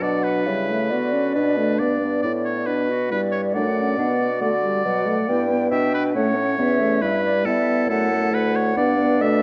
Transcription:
Already playing: F#3
0.01 B2 D4 D5 F#5
0.24 B4
0.46 C#3 G3 E4 E5
0.69 A3
0.90 D3 B3 F#4 D5
1.13 C#4
1.34 B2 D4 B4
1.57 A3
1.79 G2 B3 D5
2.01 B3
2.22 A2 E4 D5
2.45 C#5
2.66 B2 D4 B4
2.89 F#4
3.11 G2 G3 E4 B4 D5
3.32 C#5
3.54 F#2 A3 D4 D5 F#5
3.77 C#4
3.98 B2 B3 D4 F#5
4.20 F#4
4.41 D3 A3 D5
4.63 G3
4.84 B2 F#3 F#5
5.06 A3
5.28 G2 B3 E4 G5
5.49 B3
5.71 B2 D4 E5 G5
5.94 B4
6.14 A2 A3 C#4 C#5 F#5
6.36 C#4
6.58 E2 B3 C#4 E5
6.80 A3
7.01 G2 G3 E4 B4 E5
7.25 D5
7.45 G3 B3 E4 A4 E5
7.88 F#2 A3 A4 F#5
8.12 A3
8.32 D2 B4 F#5
8.56 C#5
8.76 G2 B3 D4 D5
8.97 B3
9.21 B2 A3 D5 E5

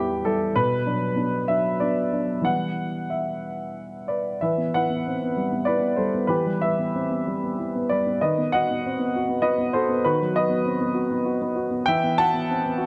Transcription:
Already playing: E2 G3 B3 E4 G4 E5 G5
0.25 G3 E4 A4
0.56 B2 B4
0.86 F#3 D4
1.16 B3 D4
1.48 F#3 D4 E5
1.80 B3 D4 D5
2.13 F#3 D4
2.41 E3 G3 B3 E4 F#5
3.10 E5
4.08 B4 D5
4.41 E3 B4 E5
4.58 B3
4.74 E4 B4 F#5
4.90 B3
5.07 C4
5.22 B3
5.37 G3
5.52 B3
5.65 E4 B4 D5
5.81 B3
5.96 G3 A4 C5
6.14 B3
6.27 E3 G4 B4
6.46 G3
6.62 E4 B4 E5
6.79 B3
6.95 C4
7.11 B3
7.27 G3
7.43 B3
7.58 E4
7.75 B3
7.89 G3 B4 D5
8.07 B3
8.21 D#3 B4 D#5
8.38 B3
8.52 F#4 D#5 F#5
8.71 B3
8.86 C4
8.99 B3
9.15 F#4
9.29 B3
9.42 F#4 B4 D#5
9.58 B3
9.73 F#4 A4 C5
9.89 B3
10.04 D#3 F#4 B4
10.21 F#3
10.36 F#4 B4 D#5
10.50 B3
10.65 C4
10.81 B3
10.94 F#4
11.11 B3
11.25 F#4
11.42 B3
11.55 F#4
11.71 B3
11.86 E3 E5 G5
12.04 B3
12.18 F#4 F#5 A5
12.33 B3
12.51 C4
12.66 B3
12.78 F#4

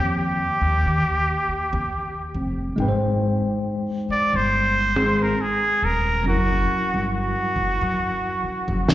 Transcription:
Already playing: D#3 A#3 G4 C#5
0.00 F2
0.18 G4
0.61 D#2
0.86 D#3
1.48 muted upright bass stroke
1.73 D#2
2.34 F1
2.76 G#1 G#3 D#4 G5
2.82 B4
2.88 C5
4.09 D5, muted upright bass stroke
4.33 G1 C5
4.96 G#1
5.22 A#4
5.41 G#4
5.82 D#1 A#4
6.24 F#1 F#3 C#4 E4
6.28 F#4 A#4
6.94 G1
7.15 F#4
7.56 F#1
7.81 F#2
8.43 muted upright bass stroke
8.68 F#1
8.88 snare

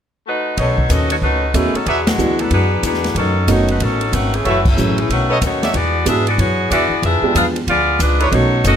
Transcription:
0.27 A3 D#4 F#4 B4
0.57 B1 B2 D#3 A3 C#4 D#4 F#4 A4 B4 C#5 D#5, kick, ride
0.78 kick
0.89 D#2 B2 D#3 A3 C#4 F#4 A4 D#5, kick, hi-hat pedal, ride
1.10 A3 D#4 F#4 C#5, ride
1.21 C#2 B2 D#3 A3 C#4 D#4 F#4 B4, kick
1.54 D#2 B2 D#3 E3 A3 B3 C#4 D#4 F#4 G#4, kick, hi-hat pedal, ride
1.74 F#3 C#4 D#4 A4, muted upright bass stroke, ride
1.86 E2 E3 F#3 G#3 B3 D4 F#4 G#4 D5 E5, kick, ride
2.07 D3 G#3 B3 F#4, snare, ride
2.18 D2 E3 G#3 B3 D4 E4 F#4, hi-hat pedal
2.39 F#3 B3 D4 A4, ride
2.51 F#2 E3 F#3 G#3 B3 D4 F#4 G#4, kick, ride
2.83 E2 E3 F#3 G#3 B3 D4 F#4 G#4, kick, hi-hat pedal, ride
2.94 snare
3.04 snare, ride
3.15 F#2 B2 D#3 F#3 A3 C#4 D#4 A4, kick, ride
3.47 F#1 B2 D#3 A3 B3 C#4 D#4 F#4 C#5, kick, hi-hat pedal, ride
3.68 A3 D#4 F#4 B4, ride
3.80 A1 B2 D#3 F#3 A3 C#4 D#4 A4, kick, ride
4.01 ride
4.12 G#1 B2 D#3 A3 C#4 F#4, kick, hi-hat pedal, ride
4.34 E3 A3 C#4 G#4, ride
4.45 F#1 F#2 E3 A3 C#4 F#4 A4 C#5 E5, kick, ride
4.65 F#3 A3 C#4 E4, kick, crash
4.77 A1 F#2 E3 F#3 A3 C#4 E4 G#4, hi-hat pedal
4.98 E3 A3 C#4 G#4, ride
5.09 B1 B2 D#3 A3 C#4 F#4, kick, ride
5.29 A4 B4 C#5 D#5
5.41 D#2 B2 D#3 A3 C#4 D#4 F#4 C#5, kick, hi-hat pedal, ride
5.62 F#4 G#4 D5 E5, snare, ride
5.73 E2 E3 G#3 B3 D4 F#4 G#4 D5, kick, ride
6.05 G#2 E3 G#3 B3 D4 E4 F#4 G#4 B4 E5, kick, hi-hat pedal, ride
6.27 B3 F#4 G#4 D5, ride
6.38 F#2 E3 G#3 B3 D4 F#4 G#4 C#5, kick, ride
6.70 E2 E3 G#3 B3 D4 F#4 G#4 D5 E5, kick, hi-hat pedal, ride
6.90 muted upright bass stroke
7.02 F2 F3 B3 D4 G#4 B4 E5, kick, ride
7.22 G#3 B3 D4 F4 G4, muted upright bass stroke
7.35 E2 F3 B3 D4 G#4 B4 F5, kick, hi-hat pedal, ride
7.56 ride
7.67 D2 F3 B3 D4 F4 G#4 D5, kick, ride
7.99 C#2 F3 G#3 B3 D4 F4 G#4 B4, kick, hi-hat pedal, ride
8.19 D#4 A4 B4 C#5, ride
8.31 B1 B2 D#3 A3 B3 C#4 D#4 F#4 C#5, kick, ride
8.64 F#1 B2 D#3 A3 C#4 F#4 A4 D#5, kick, hi-hat pedal, ride

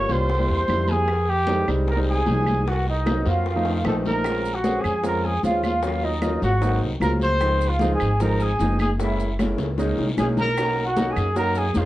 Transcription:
Already playing: C#5 C#6
0.09 C2 G3 A#3 C#4 F4 C5 C6, high conga, short guiro
0.29 high bongo, high conga, long guiro
0.38 G3 A#3 C4 E4
0.49 E2 C5 C6, high bongo, high conga
0.68 F2 G3 A#3 C4 E4, high bongo, low bongo, high conga, short guiro, claves
0.88 G#4 G#5, high bongo, high conga, short guiro
1.08 high bongo, long guiro, claves
1.27 G4 G5, high bongo, high conga
1.47 G3 G#3 C4 D#4, high bongo, high conga, short guiro
1.67 C2 G3 G#3 C4 D#4, high conga, short guiro, claves
1.86 A#4 A#5, high bongo, high conga, long guiro
1.97 G3 G#3 C4 D#4
2.06 G#4 G#5, high bongo, high conga
2.25 C2 F3 G#3 C4 D#4, high bongo, low bongo, high conga, short guiro
2.47 high bongo, high conga, short guiro, claves
2.66 F#4 F#5, high bongo, high conga, long guiro
2.86 D#4 D#5, high bongo, high conga
3.06 F#3 A#3 C4 D#4, high bongo, high conga, short guiro, claves
3.25 F2 F#3 A#3 C4 F4 F#4 F5, high conga, short guiro
3.46 high bongo, high conga, long guiro
3.56 F3 A3 C4 D#4
3.65 high bongo, high conga
3.84 A#1 F3 A3 C4 D#4 A4 A5, high bongo, high conga, short guiro, claves
4.05 A#4 A#5, low bongo, high conga, short guiro
4.24 G#3 C4 C#4 F4, high bongo, high conga, long guiro, claves, maracas
4.44 high bongo, high conga, maracas
4.53 F#4 F#5
4.64 G#3 C4 C#4 G#4, high bongo, high conga, short guiro, maracas
4.80 G#4 G#5
4.84 F2, high conga, short guiro, claves, maracas
5.03 G#3 C4 C#4 F4 A#4 A#5, high bongo, high conga, long guiro, maracas
5.24 G#4 G#5, high bongo, high conga
5.43 D#2 G#3 C4 C#4 F4 F5, high bongo, low bongo, high conga, short guiro, maracas
5.63 F4 F5, high bongo, high conga, short guiro, claves, maracas
5.82 F#3 A#3 C#4 F4 F5, high bongo, high conga, long guiro, maracas
6.03 D#4 D#5, high bongo, high conga
6.22 F#3 A#3 C#4 F4, high bongo, high conga, short guiro, claves, maracas
6.42 G#1 F#4 F#5, high conga, short guiro, maracas
6.61 F#3 A#3 C4 D#4, high bongo, high conga, long guiro, maracas
6.81 C2, high bongo, high conga
7.00 C#2 F#3 A#3 C4 F4 A#4 A#5, high bongo, low bongo, high conga, short guiro, claves, maracas
7.20 C5 C6, high bongo, high conga, short guiro, maracas
7.41 F3 G#3 C4 D#4, high bongo, long guiro, claves, maracas
7.60 high bongo, high conga, maracas
7.69 F4 F5
7.79 F3 G#3 C4 D#4, high bongo, high conga, short guiro, maracas
7.94 G#4 G#5
8.00 G#1, high conga, short guiro, claves, maracas
8.20 F3 G#3 C4 D#4 A#4 A#5, high bongo, high conga, long guiro, maracas
8.40 G#4 G#5, high bongo, high conga, maracas
8.59 F#1 F3 G#3 C4 D#4, high bongo, low bongo, high conga, short guiro, maracas
8.79 G#4 G#5, high bongo, high conga, short guiro, claves, maracas
8.99 G#3 A#3 C#4 E4 E5, high bongo, high conga, long guiro, maracas
9.18 high bongo, high conga, maracas
9.39 G#3 A#3 C#4 E4, high bongo, high conga, short guiro, claves, maracas
9.58 C#2, high bongo, high conga, short guiro, maracas
9.78 G#3 A#3 C#4 D#4, low bongo, high conga, long guiro, maracas
9.98 C2, low bongo, high conga
10.17 B1 G#3 A#3 C#4 D#4 G#4 G#5, low bongo, high conga, short guiro, claves, maracas
10.37 A#4 A#5, low bongo, high conga, short guiro, maracas
10.57 A#3 C#4 D#4 F#4, high bongo, high conga, long guiro, claves, maracas
10.78 high bongo, high conga
10.84 F#4 F#5
10.97 A#3 C#4 D#4 F#4, high bongo, high conga, short guiro, maracas
11.11 G#4 G#5
11.17 F#2, high conga, short guiro, claves, maracas
11.36 A#3 C#4 D#4 F#4 A#4 A#5, high bongo, high conga, long guiro, maracas
11.55 G#4 G#5, high bongo, high conga, maracas
11.74 F2 A#3 C#4 D#4 G#4 F5, high bongo, low bongo, high conga, short guiro, maracas
11.78 F4

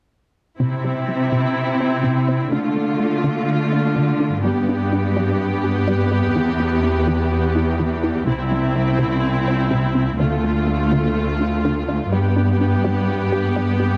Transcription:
0.60 C3 C4 E4
0.84 G3
1.08 G3
1.32 C3
1.80 C4
2.04 C3
2.28 C4
2.52 D3 A3 F4
2.76 A3
3.00 A3
3.24 D3
3.72 D4
3.96 D3
4.20 D4
4.44 G2 G3 B3 G4
4.69 D4
4.93 D4
5.16 G3
5.64 G4
5.88 G3
6.12 G4
6.36 E2 E3
6.60 B3
6.83 B3
7.07 E3
7.56 E4
7.80 E3
8.03 E4
8.27 C2 C3 C4 E4
8.52 G3
8.75 G3
8.99 C3
9.48 C4
9.71 C3
9.95 C4
10.20 D2 D3 A3 F4
10.44 A3
10.68 A3
10.92 D3
11.40 D4
11.65 D3
11.88 D4
12.11 G2 G3 B3 G4
12.36 D4
12.61 D4
12.84 G3
13.32 G4
13.56 G3
13.80 G4

